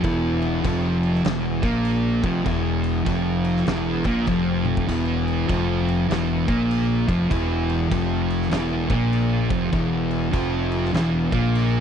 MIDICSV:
0, 0, Header, 1, 4, 480
1, 0, Start_track
1, 0, Tempo, 606061
1, 30, Time_signature, 4, 2, 24, 8
1, 9347, End_track
2, 0, Start_track
2, 0, Title_t, "Distorted electric guitar"
2, 0, Program_c, 0, 30
2, 24, Note_on_c, 0, 40, 93
2, 27, Note_on_c, 0, 52, 112
2, 508, Note_off_c, 0, 40, 0
2, 508, Note_on_c, 0, 41, 102
2, 515, Note_off_c, 0, 52, 0
2, 515, Note_on_c, 0, 53, 111
2, 981, Note_off_c, 0, 41, 0
2, 984, Note_off_c, 0, 53, 0
2, 984, Note_on_c, 0, 40, 100
2, 988, Note_on_c, 0, 52, 97
2, 1281, Note_off_c, 0, 40, 0
2, 1282, Note_off_c, 0, 52, 0
2, 1291, Note_on_c, 0, 46, 81
2, 1295, Note_on_c, 0, 58, 98
2, 1763, Note_off_c, 0, 46, 0
2, 1765, Note_off_c, 0, 58, 0
2, 1772, Note_on_c, 0, 41, 84
2, 1777, Note_on_c, 0, 53, 101
2, 1943, Note_off_c, 0, 41, 0
2, 1946, Note_on_c, 0, 40, 96
2, 1948, Note_off_c, 0, 53, 0
2, 1956, Note_on_c, 0, 52, 127
2, 2428, Note_off_c, 0, 40, 0
2, 2428, Note_on_c, 0, 41, 98
2, 2431, Note_off_c, 0, 52, 0
2, 2431, Note_on_c, 0, 53, 111
2, 2900, Note_off_c, 0, 41, 0
2, 2903, Note_on_c, 0, 40, 105
2, 2906, Note_off_c, 0, 53, 0
2, 2910, Note_on_c, 0, 52, 103
2, 3200, Note_off_c, 0, 40, 0
2, 3203, Note_off_c, 0, 52, 0
2, 3213, Note_on_c, 0, 46, 88
2, 3216, Note_on_c, 0, 58, 91
2, 3385, Note_off_c, 0, 46, 0
2, 3387, Note_off_c, 0, 58, 0
2, 3387, Note_on_c, 0, 41, 96
2, 3392, Note_on_c, 0, 53, 108
2, 3859, Note_off_c, 0, 41, 0
2, 3862, Note_on_c, 0, 40, 98
2, 3865, Note_off_c, 0, 53, 0
2, 3868, Note_on_c, 0, 52, 106
2, 4337, Note_off_c, 0, 40, 0
2, 4340, Note_on_c, 0, 41, 96
2, 4341, Note_off_c, 0, 52, 0
2, 4344, Note_on_c, 0, 53, 112
2, 4819, Note_off_c, 0, 41, 0
2, 4821, Note_off_c, 0, 53, 0
2, 4826, Note_on_c, 0, 40, 101
2, 4831, Note_on_c, 0, 52, 111
2, 5120, Note_off_c, 0, 40, 0
2, 5121, Note_on_c, 0, 46, 86
2, 5122, Note_off_c, 0, 52, 0
2, 5124, Note_on_c, 0, 58, 95
2, 5596, Note_off_c, 0, 46, 0
2, 5598, Note_off_c, 0, 58, 0
2, 5600, Note_on_c, 0, 41, 92
2, 5604, Note_on_c, 0, 53, 97
2, 5774, Note_off_c, 0, 41, 0
2, 5778, Note_on_c, 0, 40, 100
2, 5779, Note_off_c, 0, 53, 0
2, 5784, Note_on_c, 0, 52, 114
2, 6253, Note_off_c, 0, 40, 0
2, 6256, Note_off_c, 0, 52, 0
2, 6256, Note_on_c, 0, 41, 102
2, 6260, Note_on_c, 0, 53, 110
2, 6734, Note_off_c, 0, 41, 0
2, 6735, Note_off_c, 0, 53, 0
2, 6737, Note_on_c, 0, 40, 100
2, 6738, Note_on_c, 0, 52, 115
2, 7035, Note_off_c, 0, 40, 0
2, 7035, Note_off_c, 0, 52, 0
2, 7046, Note_on_c, 0, 46, 85
2, 7048, Note_on_c, 0, 58, 95
2, 7516, Note_on_c, 0, 41, 87
2, 7518, Note_off_c, 0, 46, 0
2, 7519, Note_off_c, 0, 58, 0
2, 7524, Note_on_c, 0, 53, 102
2, 7695, Note_off_c, 0, 41, 0
2, 7699, Note_off_c, 0, 53, 0
2, 7701, Note_on_c, 0, 40, 99
2, 7705, Note_on_c, 0, 52, 108
2, 8175, Note_off_c, 0, 40, 0
2, 8178, Note_on_c, 0, 41, 100
2, 8181, Note_off_c, 0, 52, 0
2, 8185, Note_on_c, 0, 53, 104
2, 8653, Note_off_c, 0, 41, 0
2, 8656, Note_on_c, 0, 40, 104
2, 8657, Note_off_c, 0, 53, 0
2, 8660, Note_on_c, 0, 52, 105
2, 8954, Note_off_c, 0, 40, 0
2, 8956, Note_off_c, 0, 52, 0
2, 8970, Note_on_c, 0, 46, 91
2, 8974, Note_on_c, 0, 58, 99
2, 9347, Note_off_c, 0, 46, 0
2, 9347, Note_off_c, 0, 58, 0
2, 9347, End_track
3, 0, Start_track
3, 0, Title_t, "Fingered electric bass"
3, 0, Program_c, 1, 33
3, 31, Note_on_c, 1, 28, 99
3, 480, Note_off_c, 1, 28, 0
3, 509, Note_on_c, 1, 29, 108
3, 959, Note_off_c, 1, 29, 0
3, 990, Note_on_c, 1, 28, 101
3, 1271, Note_off_c, 1, 28, 0
3, 1288, Note_on_c, 1, 34, 113
3, 1739, Note_off_c, 1, 34, 0
3, 1767, Note_on_c, 1, 29, 93
3, 1936, Note_off_c, 1, 29, 0
3, 1946, Note_on_c, 1, 28, 101
3, 2397, Note_off_c, 1, 28, 0
3, 2426, Note_on_c, 1, 29, 95
3, 2877, Note_off_c, 1, 29, 0
3, 2907, Note_on_c, 1, 28, 104
3, 3189, Note_off_c, 1, 28, 0
3, 3209, Note_on_c, 1, 34, 112
3, 3376, Note_off_c, 1, 34, 0
3, 3386, Note_on_c, 1, 29, 92
3, 3836, Note_off_c, 1, 29, 0
3, 3868, Note_on_c, 1, 28, 99
3, 4317, Note_off_c, 1, 28, 0
3, 4349, Note_on_c, 1, 29, 93
3, 4797, Note_off_c, 1, 29, 0
3, 4830, Note_on_c, 1, 28, 106
3, 5110, Note_off_c, 1, 28, 0
3, 5133, Note_on_c, 1, 34, 103
3, 5580, Note_off_c, 1, 34, 0
3, 5609, Note_on_c, 1, 29, 99
3, 5775, Note_off_c, 1, 29, 0
3, 5785, Note_on_c, 1, 28, 105
3, 6234, Note_off_c, 1, 28, 0
3, 6268, Note_on_c, 1, 29, 90
3, 6716, Note_off_c, 1, 29, 0
3, 6744, Note_on_c, 1, 28, 105
3, 7026, Note_off_c, 1, 28, 0
3, 7045, Note_on_c, 1, 34, 112
3, 7495, Note_off_c, 1, 34, 0
3, 7527, Note_on_c, 1, 29, 86
3, 7693, Note_off_c, 1, 29, 0
3, 7704, Note_on_c, 1, 28, 99
3, 8153, Note_off_c, 1, 28, 0
3, 8182, Note_on_c, 1, 29, 93
3, 8633, Note_off_c, 1, 29, 0
3, 8664, Note_on_c, 1, 28, 113
3, 8946, Note_off_c, 1, 28, 0
3, 8969, Note_on_c, 1, 34, 112
3, 9347, Note_off_c, 1, 34, 0
3, 9347, End_track
4, 0, Start_track
4, 0, Title_t, "Drums"
4, 31, Note_on_c, 9, 36, 106
4, 33, Note_on_c, 9, 49, 73
4, 110, Note_off_c, 9, 36, 0
4, 113, Note_off_c, 9, 49, 0
4, 332, Note_on_c, 9, 49, 60
4, 411, Note_off_c, 9, 49, 0
4, 511, Note_on_c, 9, 36, 112
4, 514, Note_on_c, 9, 49, 88
4, 591, Note_off_c, 9, 36, 0
4, 593, Note_off_c, 9, 49, 0
4, 816, Note_on_c, 9, 49, 62
4, 895, Note_off_c, 9, 49, 0
4, 909, Note_on_c, 9, 38, 33
4, 986, Note_on_c, 9, 49, 81
4, 988, Note_off_c, 9, 38, 0
4, 998, Note_on_c, 9, 38, 117
4, 1066, Note_off_c, 9, 49, 0
4, 1077, Note_off_c, 9, 38, 0
4, 1290, Note_on_c, 9, 49, 66
4, 1291, Note_on_c, 9, 36, 106
4, 1370, Note_off_c, 9, 36, 0
4, 1370, Note_off_c, 9, 49, 0
4, 1463, Note_on_c, 9, 49, 83
4, 1542, Note_off_c, 9, 49, 0
4, 1771, Note_on_c, 9, 36, 107
4, 1771, Note_on_c, 9, 49, 60
4, 1850, Note_off_c, 9, 36, 0
4, 1850, Note_off_c, 9, 49, 0
4, 1947, Note_on_c, 9, 36, 111
4, 1947, Note_on_c, 9, 49, 81
4, 2026, Note_off_c, 9, 36, 0
4, 2027, Note_off_c, 9, 49, 0
4, 2247, Note_on_c, 9, 49, 69
4, 2326, Note_off_c, 9, 49, 0
4, 2425, Note_on_c, 9, 49, 86
4, 2427, Note_on_c, 9, 36, 109
4, 2504, Note_off_c, 9, 49, 0
4, 2506, Note_off_c, 9, 36, 0
4, 2727, Note_on_c, 9, 49, 65
4, 2806, Note_off_c, 9, 49, 0
4, 2823, Note_on_c, 9, 38, 34
4, 2902, Note_off_c, 9, 38, 0
4, 2903, Note_on_c, 9, 49, 69
4, 2914, Note_on_c, 9, 38, 112
4, 2982, Note_off_c, 9, 49, 0
4, 2993, Note_off_c, 9, 38, 0
4, 3200, Note_on_c, 9, 49, 66
4, 3208, Note_on_c, 9, 36, 103
4, 3279, Note_off_c, 9, 49, 0
4, 3287, Note_off_c, 9, 36, 0
4, 3378, Note_on_c, 9, 49, 74
4, 3386, Note_on_c, 9, 36, 108
4, 3457, Note_off_c, 9, 49, 0
4, 3465, Note_off_c, 9, 36, 0
4, 3684, Note_on_c, 9, 48, 63
4, 3763, Note_off_c, 9, 48, 0
4, 3780, Note_on_c, 9, 36, 103
4, 3859, Note_off_c, 9, 36, 0
4, 3870, Note_on_c, 9, 36, 85
4, 3872, Note_on_c, 9, 49, 74
4, 3872, Note_on_c, 9, 55, 85
4, 3949, Note_off_c, 9, 36, 0
4, 3951, Note_off_c, 9, 49, 0
4, 3951, Note_off_c, 9, 55, 0
4, 4179, Note_on_c, 9, 49, 59
4, 4258, Note_off_c, 9, 49, 0
4, 4351, Note_on_c, 9, 36, 103
4, 4351, Note_on_c, 9, 49, 77
4, 4430, Note_off_c, 9, 36, 0
4, 4430, Note_off_c, 9, 49, 0
4, 4661, Note_on_c, 9, 49, 64
4, 4740, Note_off_c, 9, 49, 0
4, 4837, Note_on_c, 9, 49, 77
4, 4848, Note_on_c, 9, 38, 102
4, 4916, Note_off_c, 9, 49, 0
4, 4927, Note_off_c, 9, 38, 0
4, 5134, Note_on_c, 9, 36, 109
4, 5138, Note_on_c, 9, 49, 60
4, 5213, Note_off_c, 9, 36, 0
4, 5217, Note_off_c, 9, 49, 0
4, 5314, Note_on_c, 9, 49, 86
4, 5393, Note_off_c, 9, 49, 0
4, 5612, Note_on_c, 9, 36, 94
4, 5616, Note_on_c, 9, 49, 68
4, 5691, Note_off_c, 9, 36, 0
4, 5695, Note_off_c, 9, 49, 0
4, 5790, Note_on_c, 9, 36, 108
4, 5796, Note_on_c, 9, 49, 84
4, 5869, Note_off_c, 9, 36, 0
4, 5875, Note_off_c, 9, 49, 0
4, 6094, Note_on_c, 9, 49, 63
4, 6173, Note_off_c, 9, 49, 0
4, 6269, Note_on_c, 9, 36, 106
4, 6270, Note_on_c, 9, 49, 86
4, 6348, Note_off_c, 9, 36, 0
4, 6350, Note_off_c, 9, 49, 0
4, 6575, Note_on_c, 9, 49, 67
4, 6655, Note_off_c, 9, 49, 0
4, 6667, Note_on_c, 9, 38, 33
4, 6743, Note_on_c, 9, 49, 84
4, 6746, Note_off_c, 9, 38, 0
4, 6754, Note_on_c, 9, 38, 120
4, 6822, Note_off_c, 9, 49, 0
4, 6833, Note_off_c, 9, 38, 0
4, 7048, Note_on_c, 9, 36, 105
4, 7051, Note_on_c, 9, 49, 60
4, 7127, Note_off_c, 9, 36, 0
4, 7131, Note_off_c, 9, 49, 0
4, 7229, Note_on_c, 9, 49, 74
4, 7308, Note_off_c, 9, 49, 0
4, 7527, Note_on_c, 9, 36, 111
4, 7528, Note_on_c, 9, 49, 54
4, 7606, Note_off_c, 9, 36, 0
4, 7607, Note_off_c, 9, 49, 0
4, 7704, Note_on_c, 9, 36, 106
4, 7704, Note_on_c, 9, 49, 68
4, 7783, Note_off_c, 9, 36, 0
4, 7783, Note_off_c, 9, 49, 0
4, 8005, Note_on_c, 9, 49, 64
4, 8084, Note_off_c, 9, 49, 0
4, 8185, Note_on_c, 9, 36, 104
4, 8186, Note_on_c, 9, 49, 80
4, 8264, Note_off_c, 9, 36, 0
4, 8265, Note_off_c, 9, 49, 0
4, 8487, Note_on_c, 9, 49, 62
4, 8567, Note_off_c, 9, 49, 0
4, 8593, Note_on_c, 9, 38, 34
4, 8666, Note_on_c, 9, 49, 72
4, 8672, Note_off_c, 9, 38, 0
4, 8677, Note_on_c, 9, 38, 96
4, 8745, Note_off_c, 9, 49, 0
4, 8756, Note_off_c, 9, 38, 0
4, 8969, Note_on_c, 9, 36, 112
4, 8973, Note_on_c, 9, 49, 57
4, 9048, Note_off_c, 9, 36, 0
4, 9052, Note_off_c, 9, 49, 0
4, 9150, Note_on_c, 9, 49, 83
4, 9229, Note_off_c, 9, 49, 0
4, 9347, End_track
0, 0, End_of_file